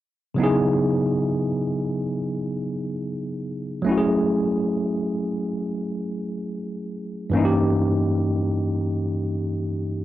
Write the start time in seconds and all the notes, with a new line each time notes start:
0.35 C#3 F#3 B3
0.40 D#4 E4 G#4
3.82 F#3 A3
3.86 C#4 E4
3.91 F#4
3.97 G#4
7.30 G2 E3 A#3
7.35 C#4 D#4 E4
7.45 G4